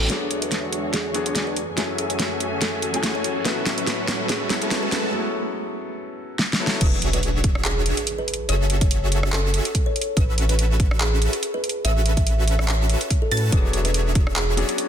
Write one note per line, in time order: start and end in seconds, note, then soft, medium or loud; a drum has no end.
0.00 0.08 F#3 medium
0.00 0.09 B3 medium
0.00 0.12 C#4 medium
0.00 0.11 E4 medium
0.00 0.12 A4 medium
0.08 1.55 E2 medium
0.08 1.55 D3 medium
0.08 1.55 E3 medium
0.08 1.11 F#3 medium
0.08 1.55 G#3 medium
0.08 1.12 B3 medium
0.08 1.23 D4 medium
0.08 1.13 D4 medium
0.08 1.23 F#4 medium
0.08 1.55 F#4 medium
0.08 1.23 G#4 medium
0.08 0.28 B4 medium
0.08 1.12 C#5 medium
0.08 1.23 C#5 medium
0.08 1.55 C#5 medium
0.08 1.23 E5 medium
0.08 snare soft
0.08 closed hi-hat medium
0.08 riser medium
0.12 1.13 G#4 medium
0.31 closed hi-hat medium
0.42 0.60 B4 medium
0.42 closed hi-hat medium
0.52 snare medium
0.52 closed hi-hat medium
0.73 closed hi-hat medium
0.94 1.06 G#4 medium
0.94 snare soft
0.94 closed hi-hat medium
1.14 1.55 F#3 medium
1.14 1.55 B3 medium
1.14 1.56 D4 medium
1.14 1.56 G#4 loud
1.14 1.55 C#5 medium
1.14 closed hi-hat medium
1.26 1.55 D4 medium
1.26 1.55 F#4 medium
1.26 1.55 G#4 medium
1.26 1.55 C#5 medium
1.26 1.55 G#5 loud
1.26 closed hi-hat medium
1.35 snare medium
1.35 closed hi-hat medium
1.47 1.65 B4 loud
1.56 3.43 F#2 medium
1.56 3.44 E3 medium
1.56 3.43 A3 medium
1.56 3.44 G#5 medium
1.56 closed hi-hat medium
1.76 2.90 F#3 medium
1.76 2.91 A3 medium
1.76 2.91 C#4 medium
1.76 2.92 E4 medium
1.76 2.91 F#4 medium
1.76 2.91 G#4 medium
1.76 2.91 A4 medium
1.76 1.96 C#5 loud
1.76 2.91 E5 medium
1.76 2.92 G#5 medium
1.76 snare medium
1.76 closed hi-hat medium
1.98 closed hi-hat medium
2.10 2.27 C#5 medium
2.10 closed hi-hat medium
2.19 snare medium
2.19 closed hi-hat medium
2.40 closed hi-hat medium
2.61 2.74 A4 medium
2.61 snare medium
2.61 closed hi-hat medium
2.82 closed hi-hat medium
2.92 3.42 F#3 medium
2.92 3.43 A3 medium
2.92 3.43 C#4 medium
2.92 3.44 E4 medium
2.92 3.43 F#4 medium
2.92 3.43 G#4 medium
2.92 3.43 A4 medium
2.92 3.43 G#5 loud
2.92 3.44 G#5 medium
2.92 closed hi-hat medium
3.03 snare medium
3.03 closed hi-hat medium
3.15 3.32 C#5 loud
3.24 closed hi-hat medium
3.43 5.12 A2 medium
3.43 4.47 F#3 medium
3.43 5.12 F#3 medium
3.43 4.48 B3 medium
3.43 4.48 C#4 medium
3.43 5.12 C#4 medium
3.43 4.59 C#4 medium
3.43 4.49 E4 medium
3.43 4.59 F#4 medium
3.43 4.59 A4 medium
3.43 4.49 A4 medium
3.43 5.12 B4 medium
3.43 4.59 B4 medium
3.43 3.63 B4 medium
3.43 4.59 E5 medium
3.43 snare medium
3.43 closed hi-hat medium
3.66 snare medium
3.66 closed hi-hat medium
3.78 3.95 B4 loud
3.78 closed hi-hat medium
3.87 snare medium
3.87 closed hi-hat medium
4.08 snare medium
4.08 closed hi-hat medium
4.29 4.42 G#4 medium
4.29 snare medium
4.29 closed hi-hat medium
4.48 5.10 F#3 medium
4.48 5.10 B3 medium
4.48 5.11 C#4 medium
4.48 5.11 E4 medium
4.48 snare medium
4.48 closed hi-hat medium
4.52 5.12 A4 loud
4.62 5.11 C#4 medium
4.62 5.11 F#4 medium
4.62 5.11 A4 medium
4.62 5.11 B4 medium
4.62 5.11 A5 loud
4.62 closed hi-hat medium
4.71 snare medium
4.71 closed hi-hat medium
4.83 5.00 B4 loud
4.92 snare medium
4.92 closed hi-hat medium
5.11 6.26 F#3 medium
5.11 6.26 B3 medium
5.11 6.27 C#4 medium
5.11 6.27 E4 medium
5.15 6.28 A4 medium
6.39 snare medium
6.53 snare medium
6.59 6.78 F#3 loud
6.59 6.79 B3 medium
6.59 6.79 C#4 medium
6.59 6.79 E4 medium
6.59 6.79 A4 loud
6.67 snare loud
6.81 7.92 E1 loud
6.81 7.95 D4 medium
6.81 7.95 F#4 medium
6.81 7.95 G#4 medium
6.81 6.99 B4 medium
6.81 7.95 C#5 medium
6.81 7.95 E5 medium
6.81 7.95 E6 medium
6.81 kick loud
6.81 closed hi-hat medium
6.81 crash loud
6.81 impact medium
7.02 closed hi-hat medium
7.13 7.31 B4 medium
7.13 closed hi-hat medium
7.23 closed hi-hat medium
7.44 kick loud
7.44 closed hi-hat medium
7.55 cross-stick medium
7.65 7.78 G#4 medium
7.65 clap loud
7.65 closed hi-hat medium
7.86 closed hi-hat medium
7.97 closed hi-hat medium
8.07 closed hi-hat medium
8.18 8.36 B4 medium
8.28 closed hi-hat medium
8.34 closed hi-hat medium
8.49 9.60 F#1 medium
8.49 9.63 C#4 medium
8.49 9.62 F#4 medium
8.49 9.62 G#4 medium
8.49 9.62 A4 medium
8.49 8.67 C#5 loud
8.49 9.63 E5 medium
8.49 9.63 E6 medium
8.49 closed hi-hat medium
8.70 closed hi-hat medium
8.81 8.99 C#5 medium
8.81 kick loud
8.81 closed hi-hat medium
8.91 closed hi-hat medium
9.12 closed hi-hat medium
9.23 cross-stick medium
9.33 9.45 A4 medium
9.33 clap loud
9.33 closed hi-hat medium
9.54 closed hi-hat medium
9.65 closed hi-hat medium
9.75 kick medium
9.75 closed hi-hat medium
9.86 10.04 C#5 loud
9.96 closed hi-hat soft
10.01 closed hi-hat medium
10.17 11.28 A1 medium
10.17 11.30 C#4 medium
10.17 11.30 F#4 medium
10.17 11.30 A4 medium
10.17 10.35 B4 loud
10.17 11.30 B4 medium
10.17 11.30 E5 medium
10.17 11.30 E6 medium
10.17 kick loud
10.17 closed hi-hat medium
10.38 closed hi-hat medium
10.49 10.67 B4 medium
10.49 closed hi-hat medium
10.59 closed hi-hat medium
10.80 kick loud
10.80 closed hi-hat medium
10.91 cross-stick medium
11.01 11.13 G#4 medium
11.01 clap loud
11.01 closed hi-hat medium
11.22 closed hi-hat medium
11.33 closed hi-hat medium
11.43 closed hi-hat medium
11.54 11.72 B4 loud
11.64 closed hi-hat soft
11.69 closed hi-hat medium
11.85 12.96 A1 loud
11.85 12.98 C#4 medium
11.85 12.98 F#4 medium
11.85 12.98 A4 medium
11.85 12.98 B4 medium
11.85 12.98 E5 medium
11.85 12.03 E5 loud
11.85 12.98 E6 medium
11.85 closed hi-hat medium
12.06 closed hi-hat medium
12.17 12.34 E5 loud
12.17 kick loud
12.17 closed hi-hat medium
12.27 closed hi-hat medium
12.48 closed hi-hat medium
12.59 cross-stick medium
12.68 12.81 C#5 medium
12.68 clap loud
12.68 closed hi-hat medium
12.89 closed hi-hat medium
13.01 closed hi-hat medium
13.10 kick medium
13.10 closed hi-hat medium
13.22 13.39 A4 loud
13.31 13.50 A2 loud
13.31 13.50 C#4 medium
13.31 13.50 F#4 medium
13.31 13.50 A4 medium
13.31 13.50 B4 medium
13.31 13.50 A5 loud
13.31 13.50 A6 loud
13.31 closed hi-hat soft
13.37 closed hi-hat medium
13.50 14.64 E1 medium
13.50 14.54 F#3 medium
13.50 14.55 B3 medium
13.50 14.56 D4 medium
13.50 14.56 G#4 medium
13.50 13.70 B4 loud
13.50 14.55 C#5 medium
13.50 14.66 E6 medium
13.50 kick loud
13.50 closed hi-hat medium
13.73 closed hi-hat medium
13.85 14.02 B4 loud
13.85 closed hi-hat medium
13.94 closed hi-hat medium
14.15 kick loud
14.15 closed hi-hat medium
14.27 cross-stick medium
14.36 14.49 G#4 medium
14.36 clap loud
14.36 closed hi-hat medium
14.56 14.88 F#3 medium
14.56 14.88 B3 medium
14.56 14.88 C#4 medium
14.56 14.88 D4 medium
14.56 14.88 G#4 loud
14.56 closed hi-hat medium
14.69 closed hi-hat medium
14.78 closed hi-hat medium